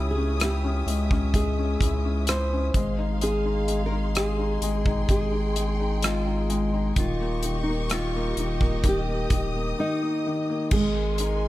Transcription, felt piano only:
Already playing: C#3 C#4 E4
0.17 C#4
0.41 E4
0.64 C#4
0.88 G#3
1.12 C#4
1.34 G#3
1.59 C#4
1.82 E4
2.05 C#4
2.29 E4
2.53 C#4
2.76 G#3
2.98 D#4
3.22 G#3
3.45 D#4
3.68 G#3
3.92 D#4
4.16 G#3
4.39 D#4
4.63 G#3
4.87 D#4
5.09 G#3
5.33 D#4
5.57 G#3
5.80 D#4
6.03 G#3
6.27 D#4
6.50 G#3
6.74 D#4
6.97 D#3
7.20 A#3
7.44 D#3
7.69 A#3
7.92 D#3
8.15 A#3
8.39 D#3
8.61 A#3
8.85 D#3
9.08 A#3
9.32 D#3
9.56 A#3
9.79 D#3
10.02 A#3
10.27 D#3
10.50 A#3
10.72 G#3
11.19 D#4

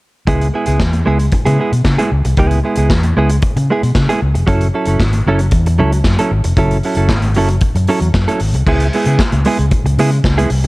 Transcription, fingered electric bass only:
0.27 C#2
0.68 C#2
0.80 E2
1.07 C#2
1.33 muted fingered electric bass stroke
1.46 C#3
1.72 B2
1.85 C#3
2.12 C#2
2.25 C2
2.38 C#2
2.77 C#2
2.90 E2
3.17 C#2
3.43 muted fingered electric bass stroke
3.56 C#3
3.83 B2
3.95 C#3
4.22 C#2
4.35 F1
4.47 F#1
4.87 F#1
5.00 G#1
5.26 F#1
5.52 E2
5.79 C#2
6.05 F#2
6.31 G#1
6.45 F1
6.57 F#1
6.97 F#1
7.09 G#1
7.36 F#1
7.62 muted fingered electric bass stroke
7.75 F#2
8.01 E2
8.14 F#2
8.41 G#1
8.53 C2
8.66 C#2
9.06 C#3
9.33 C#2
9.59 C#2
9.84 C#2
9.98 C#3
10.24 C#2
10.51 C2

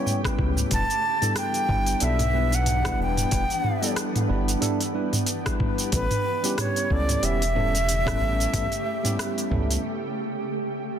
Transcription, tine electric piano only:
Already playing: G3 B3 C#4 E4 C#5
0.24 G3 B3 E4 B4
0.70 G3 B3 D4 E4 B4
1.22 G3 B3 D4 E4 A4
1.68 G3 B3 D4 E4 B4
2.00 G3 B3 D4 E4 A4
2.33 G3 B3 D4 E4 B4
2.84 G3 B3 D4 E4 B4
3.31 G3 B3 D4 E4 B4
3.82 G3 B3 D4 E4 A4
4.28 G3 B3 D4 E4 B4
4.61 G3 B3 D4 E4 A4
4.94 G3 B3 D4 E4 B4
5.45 G3 B3 D4 E4 B4
5.92 G3 B3 C#4 E4 A4
6.43 G3 B3 C#4 E4 G4
6.90 G3 B3 C#4 E4 A4
7.22 G3 B3 C#4 E4 G4
7.55 G3 B3 C#4 E4 A4
8.05 G3 B3 C#4 E4 A4
8.52 G3 B3 C#4 E4 A4
9.03 G3 B3 C#4 E4 G4
9.50 G3 B3 C#4 E4 A4

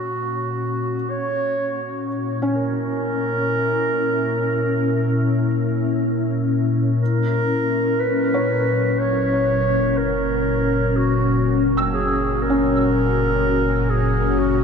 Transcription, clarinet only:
Already playing: F#4
1.10 C#5
2.55 A#4
7.02 A#4
8.00 B4
8.99 C#5
9.97 A#4
10.96 F#4
11.93 G#4
12.42 A#4
13.90 G#4
14.39 F#4

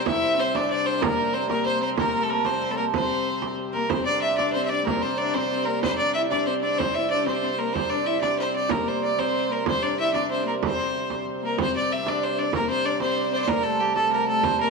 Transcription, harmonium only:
0.06 C3 G3
3.89 C3 G3
7.75 C3 G3
11.58 C3 G3

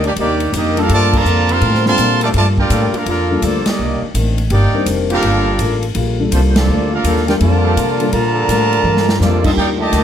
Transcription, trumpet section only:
0.06 A#3 D#4 G4 D5
0.19 A#3 D#4 G4 D5
0.55 A#3 D4 G4 D#5
0.80 D4 G4 A#4 F5
0.93 F4 A#4 D5 A5
1.16 F4 D5 A5 A#5
1.51 A#4 F5 A5 C6
1.87 A#4 F5 A5 C6
2.22 F4 A#4 D5 A5
2.36 F4 A#4 D5 A5
2.59 F4 A#4 D5 G5
2.95 D4 A4 A#4 F5
3.07 D4 A4 A#4 F5
3.43 A#3 F4 A4 D5
3.67 A#3 G4 D5 D#5
4.53 D#4 A#4 D5 G5
5.12 D4 A4 A#4 F5
6.33 A3 D4 F4 C5
6.48 C5
6.56 A#3 F4 A4 D5
6.94 D4 A4 A#4 F5
7.28 F4 A#4 D5 G5
7.41 F4 A#4 D5 A5
8.12 F4 D5 A5 A#5
9.20 A#3 F4 A4 D5
9.45 C4 F4 A4 D#5
9.57 D#4 A#4 D5 G5
9.80 G4 D5 D#5 A5

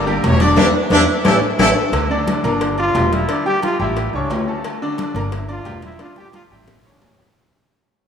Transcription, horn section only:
0.07 A#3 A#4
0.24 C#4 C#5
0.40 D4 D5
0.57 D4 E4 G4
0.92 D4 E4 G4
1.26 E4 G4 A4
1.60 E4 G4 A4

